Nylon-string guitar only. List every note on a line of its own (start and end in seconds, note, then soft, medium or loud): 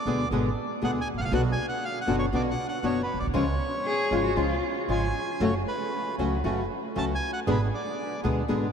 0.06 0.23 B2 medium
0.06 0.23 D3 medium
0.06 0.23 G#3 medium
0.06 0.23 B3 medium
0.06 0.23 G#4 medium
0.32 0.48 B2 medium
0.32 0.48 D3 medium
0.32 0.48 G#3 medium
0.32 0.49 B3 medium
0.32 0.48 G#4 medium
0.82 0.98 B2 medium
0.82 0.98 D3 medium
0.82 0.99 G#3 medium
0.82 0.99 B3 medium
0.82 0.99 G#4 medium
1.32 1.41 B2 medium
1.32 1.41 D3 medium
1.32 1.41 B3 loud
1.32 1.41 D4 loud
1.32 1.42 F#4 loud
2.07 2.24 B2 medium
2.07 2.24 D3 medium
2.07 2.24 B3 medium
2.07 2.24 D4 medium
2.07 2.24 F#4 medium
2.32 2.49 B2 medium
2.32 2.50 D3 medium
2.32 2.50 B3 medium
2.32 2.50 D4 medium
2.32 2.50 F#4 medium
2.84 3.00 B2 medium
2.84 3.00 D3 medium
2.84 3.00 B3 medium
2.84 3.01 D4 medium
2.84 3.00 F#4 medium
3.34 3.43 C#3 medium
3.34 3.43 F3 loud
3.34 3.43 G#3 medium
3.34 3.43 C#4 medium
3.34 3.43 F4 medium
4.11 4.28 C#3 medium
4.11 4.28 F3 medium
4.11 4.28 G#3 medium
4.11 4.28 C#4 medium
4.11 4.29 F4 medium
4.36 4.54 C#3 medium
4.36 4.54 F3 medium
4.36 4.54 G#3 medium
4.36 4.54 C#4 medium
4.36 4.54 F4 medium
4.88 5.06 C#3 medium
4.88 5.06 F3 medium
4.88 5.06 G#3 medium
4.88 5.06 C#4 medium
4.88 5.06 F4 medium
5.40 5.50 C#3 medium
5.40 5.50 F#3 medium
5.40 5.50 A3 medium
5.40 5.50 C#4 medium
5.40 5.50 F#4 medium
6.19 6.36 C#3 medium
6.19 6.36 F#3 medium
6.19 6.36 A3 medium
6.19 6.36 C#4 medium
6.19 6.36 F#4 medium
6.44 6.61 C#3 medium
6.44 6.61 F#3 medium
6.44 6.61 A3 medium
6.44 6.61 C#4 medium
6.44 6.62 F#4 medium
6.95 7.12 C#3 medium
6.95 7.13 F#3 medium
6.95 7.13 A3 medium
6.95 7.13 C#4 medium
6.95 7.13 F#4 medium
7.47 7.56 B2 medium
7.47 7.56 D3 medium
7.47 7.56 G#3 medium
7.47 7.56 B3 medium
7.47 7.56 G#4 medium
8.24 8.40 B2 medium
8.24 8.40 D3 medium
8.24 8.40 G#3 medium
8.24 8.40 B3 medium
8.24 8.41 G#4 medium
8.48 8.65 B2 medium
8.48 8.65 D3 medium
8.48 8.65 G#3 medium
8.48 8.65 B3 medium
8.48 8.65 G#4 medium